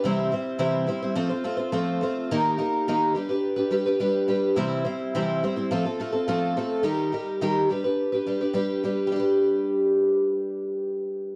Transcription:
\new Staff \with { instrumentName = "Twelve-string acoustic guitar" } { \time 4/4 \key g \mixolydian \tempo 4 = 106 <c e g c' e' c''>8 <g c' e' c''>8 <c e g c' e' c''>8 <g c' e' c''>16 <g c' e' c''>16 <f a c' f' c''>16 <c' f' c''>16 <a c' f' c''>16 <c' f' c''>16 <f a c' f' c''>8 <a c' f' c''>8 | <ees bes ees' g' bes'>8 <bes ees' g' bes'>8 <ees bes ees' g' bes'>8 <g d' g' b'>16 <d' g' b'>8 <d' g' b'>16 <g d' g' b'>16 <d' g' b'>16 <g d' g' b'>8 <g d' g' b'>8 | <c e g c' e' c''>8 <g c' e' c''>8 <c e g c' e' c''>8 <g c' e' c''>16 <g c' e' c''>16 <f a c' f' a'>16 <c' f' a'>16 <a c' f' a'>16 <c' f' a'>16 <f a c' f' a'>8 <a c' f' a'>8 | <ees g ees' g' bes'>8 <g ees' g' bes'>8 <ees g ees' g' bes'>8 <g d' g' b'>16 <d' g' b'>8 <d' g' b'>16 <g d' g' b'>16 <d' g' b'>16 <g d' g' b'>8 <g d' g' b'>8 |
<g d' g' b'>1 | }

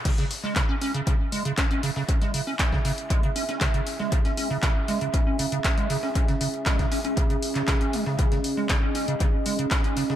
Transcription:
<<
  \new Staff \with { instrumentName = "Analog synth pad" } { \time 4/4 \key cis \minor \tempo 4 = 118 << { e''1~ | e''1~ | e''1~ | e''1 |
dis''1 | } \\ { <cis' gis'>1~ | <cis' gis'>1~ | <cis' gis'>1~ | <cis' gis'>1~ |
<cis' gis'>1 | } >> }
  \new Staff \with { instrumentName = "Acid bass" } { \clef bass \time 4/4 \key cis \minor cis16 cis16 r16 gis16 cis16 cis'16 cis'16 cis16 cis16 r16 gis16 cis16 cis'16 cis'16 cis16 cis16 | r16 gis16 cis16 cis'16 cis'16 cis16 cis16 r16 gis16 cis16 cis'16 cis'16 cis16 cis16 r16 gis16 | cis16 cis'16 cis'16 cis16 cis16 r16 gis16 cis16 cis'16 cis'16 cis16 cis16 r16 gis16 cis16 cis'16 | cis'16 cis16 cis16 r16 gis16 cis16 cis'16 cis'16 cis16 cis16 r16 cis16 cis16 cis'16 gis16 cis16 |
cis16 cis16 r16 gis16 cis16 cis'16 cis'16 cis16 cis16 r16 gis16 cis16 cis'16 cis'16 cis16 cis16 | }
  \new DrumStaff \with { instrumentName = "Drums" } \drummode { \time 4/4 <cymc hh bd>16 <hh sn>16 <hh hho>8 <hc hh bd sn>8 <hh hho>16 hh16 <hh bd>8 <hh hho>16 hh16 <hc hh bd sn>16 hh16 <hh hho>16 sn16 | <hh bd>16 <hh sn>16 <hh hho>8 <hc hh bd sn>16 <bd sn>16 hho16 hh16 <hh bd>16 hh16 <hh hho>16 <hh sn>16 <hc hh bd sn>16 hh16 <hh hho>16 sn16 | <hh bd>16 <hh sn>16 <hh hho>8 <hc hh bd sn>8 <hh hho>16 hh16 <hh bd>8 <hh hho>16 hh16 <hc hh bd sn>16 hh16 <hh hho>16 sn16 | <hh bd>16 <hh sn>16 <hh hho>16 hh16 <hc hh bd sn>16 <hh bd sn>16 hho16 hh16 <hh bd>16 hh16 <hh hho>16 <hc hh sn>16 <hc hh bd sn>16 hh16 <hh hho>16 sn16 |
<hh bd>16 <hh sn>16 <hh hho>8 <hc hh bd sn>8 <hh hho>16 hh16 <hh bd>8 <hh hho>16 hh16 <hc hh bd sn>16 hh16 <hh hho>16 sn16 | }
>>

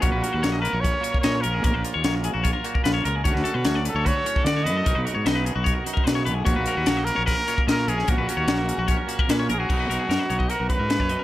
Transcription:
<<
  \new Staff \with { instrumentName = "Clean electric guitar" } { \time 4/4 \key fis \major \tempo 4 = 149 cis''16 b'16 ais'16 b'16 cis''16 dis''16 b'16 cis''16 b'16 ais'16 cis''16 ais'16 dis''16 cis''16 ais'16 gis'16 | ais'16 b'16 ais'16 cis''16 cis''16 ais'16 gis'16 fis'16 cis''16 ais'16 fis'16 ais'16 b'16 cis''16 ais'16 gis'16 | cis''16 b'16 a'16 b'16 cis''16 d''16 b'16 cis''16 b'16 a'16 cis''16 a'16 d''16 cis''16 b'16 a'16 | ais'16 b'16 ais'16 cis''16 dis''16 b'16 gis'16 fis'16 cis''16 ais'16 fis'16 ais'16 b'16 cis''16 b'16 gis'16 |
cis''16 b'16 ais'16 b'16 cis''16 dis''16 b'16 cis''16 b'16 ais'16 cis''16 ais'16 dis''16 cis''16 ais'16 gis'16 | ais'16 b'16 ais'16 cis''16 cis''16 ais'16 gis'16 fis'16 cis''16 ais'16 fis'16 ais'16 b'16 cis''16 ais'16 gis'16 | ais'16 b'16 ais'16 gis'16 ais'16 b'16 cis''16 dis''16 fis''16 ais'16 b'16 ais'16 b'16 cis''16 dis''16 ais'16 | }
  \new Staff \with { instrumentName = "Trumpet" } { \time 4/4 \key fis \major fis'4. ais'8 cis''4 cis''8 ais'8~ | ais'8 r2. r8 | fis'4. a'8 cis''4 d''8 dis''8~ | dis''8 r2. r8 |
fis'4. ais'8 ais'4 ais'8 gis'8 | fis'2. r8 gis'16 fis'16~ | fis'2 ais'8 b'4. | }
  \new Staff \with { instrumentName = "Clean electric guitar" } { \time 4/4 \key fis \major << { <fis ais cis'>8 cis'8 ais4 cis'8 ais8 cis'8 cis'8 | ais8 eis'8 ais4 eis'8 ais8 eis'8 ais'8 | cis'8 cis'8 cis'4 fis'8 cis'8 fis'8 fis'8 | dis'8 fis'8 dis'4 fis'8 dis'4. |
ais8 cis'8 ais4 cis'8 ais8 cis'8 cis'8 | ais8 cis'8 ais4 cis'8 ais8 cis'8 ais'8 | <fis b dis'>4. dis'8 fis'2 | } \\ { ais,4 fis4. ais,4. | ais,4 fis4. ais,4. | d4 fis4. a,4. | b,4 b4. fis,8 cis8 b,8 |
ais,4 fis4. ais,4. | ais,4 fis4. ais,4. | b,4 fis4. fis,8 ais,8 b,8 | } >> }
  \new Staff \with { instrumentName = "Fingered electric bass" } { \clef bass \time 4/4 \key fis \major ais,,16 ais,,16 r16 dis,16 ais,,8. ais,,8 r8. ais,8 ais,,8 | ais,,16 ais,,16 r16 dis,16 ais,,8. ais,,8 r8. ais,,8 cis,8 | d,16 d,16 r16 b,16 d,8. d,8 r8. d8 fis,8 | b,,16 b,,16 r16 gis,16 b,,8. b,,8 r8. b,8 b,,8 |
ais,,16 ais,,16 r16 dis,16 ais,,8. ais,,8 r8. ais,8 ais,,8 | ais,,16 ais,,16 r16 dis,16 ais,,8. ais,,8 r8. ais,8 ais,,8 | b,,8 b,,16 r16 fis,16 r16 b,,8 r16 b,,16 r16 gis,8 fis,8 r16 | }
  \new DrumStaff \with { instrumentName = "Drums" } \drummode { \time 4/4 <hh bd>8 hh8 <hh sn>8 hh8 <hh bd>8 hh16 bd16 <hh sn>8 hh8 | <hh bd>8 hh8 <hh sn>8 hh8 <hh bd>8 hh16 bd16 <hh sn>8 hh8 | <hh bd>16 sn16 hh8 <hh sn>8 hh8 <hh bd>8 hh16 bd16 <hh sn>8 hh8 | <hh bd>8 hh8 <hh sn>8 hh8 <hh bd>8 hh16 bd16 <hh sn>8 hh8 |
<hh bd>8 hh8 <hh sn>8 hh8 <hh bd>8 hh16 bd16 <hh sn>8 hh16 sn16 | <hh bd>8 hh8 <hh sn>8 hh8 <hh bd>8 hh16 bd16 <hh sn>8 hh8 | <cymc bd>8 hh8 <hh sn>8 hh16 bd16 hh8 <hh bd>8 <hh sn>16 bd16 hh8 | }
>>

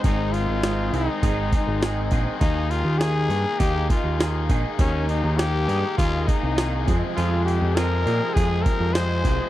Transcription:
<<
  \new Staff \with { instrumentName = "Trumpet" } { \time 4/4 \key ees \mixolydian \tempo 4 = 101 ees'8 f'4 ees'2 r8 | ees'8 f'8 aes'4 g'8 f'4 r8 | des'8 ees'8 g'4 f'8 ees'4 r8 | f'8 g'8 bes'4 aes'8 bes'8 c''4 | }
  \new Staff \with { instrumentName = "Overdriven electric guitar" } { \time 4/4 \key ees \mixolydian <aes, ees aes c' ees' aes'>4 <aes, ees aes c' ees' aes'>8 <aes, ees aes c' ees' aes'>8 <aes, ees aes c' ees' aes'>4 <aes, ees aes c' ees' aes'>8 <aes, ees aes c' ees' aes'>8 | <ees bes ees' aes'>4 <ees bes ees' aes'>8 <ees bes ees' aes'>8 <ees bes ees' aes'>4 <ees bes ees' aes'>8 <ees bes ees' aes'>8 | <ees bes ees' aes'>4 <ees bes ees' aes'>8 <ees bes ees' aes'>8 <ees bes ees' aes'>4 <ees bes ees' aes'>8 <f, c f aes c' aes'>8 | <f, c f aes c' aes'>4 <f, c f aes c' aes'>8 <f, c f aes c' aes'>8 <f, c f aes c' aes'>4 <f, c f aes c' aes'>8 <f, c f aes c' aes'>8 | }
  \new Staff \with { instrumentName = "Overdriven electric guitar" } { \time 4/4 \key ees \mixolydian <aes, ees aes c' ees' aes'>4 <aes, ees aes c' ees' aes'>8 <aes, ees aes c' ees' aes'>8 <aes, ees aes c' ees' aes'>4 <aes, ees aes c' ees' aes'>8 <aes, ees aes c' ees' aes'>8 | <ees bes ees' aes'>4 <ees bes ees' aes'>8 <ees bes ees' aes'>8 <ees bes ees' aes'>4 <ees bes ees' aes'>8 <ees bes ees' aes'>8 | <ees bes ees' aes'>4 <ees bes ees' aes'>8 <ees bes ees' aes'>8 <ees bes ees' aes'>4 <ees bes ees' aes'>8 <f, c f aes c' aes'>8 | <f, c f aes c' aes'>4 <f, c f aes c' aes'>8 <f, c f aes c' aes'>8 <f, c f aes c' aes'>4 <f, c f aes c' aes'>8 <f, c f aes c' aes'>8 | }
  \new Staff \with { instrumentName = "Picked electric bass" } { \clef bass \time 4/4 \key ees \mixolydian aes,,8. aes,,8. c,16 r16 aes,,8 r16 aes,,8. bes,,16 r16 | ees,8. ees,8. g,16 r16 ees,8 r16 ees,8. bes,,16 r16 | ees,8. ees,8. g,16 r16 ees,8 r16 c,8. f,16 r16 | f,8. f,8. bes,16 r16 f,8 r16 f,8. c,16 r16 | }
  \new DrumStaff \with { instrumentName = "Drums" } \drummode { \time 4/4 <hho bd>8 hho8 <hho sn>8 hho8 <hho bd>8 <hho bd>8 <hho sn>8 <hho bd>8 | <hho bd>8 hho8 <hho sn>8 hho8 <hho bd>8 <hho bd>8 <hho sn>8 <hho bd>8 | <hho bd>8 hho8 <hho sn>8 hho8 <hho bd>8 <hho bd>8 <hho sn>8 <hho bd>8 | hho8 hho8 <hho sn>8 hho8 <hho bd>8 <hho bd>8 <hho sn>8 <hho bd>8 | }
>>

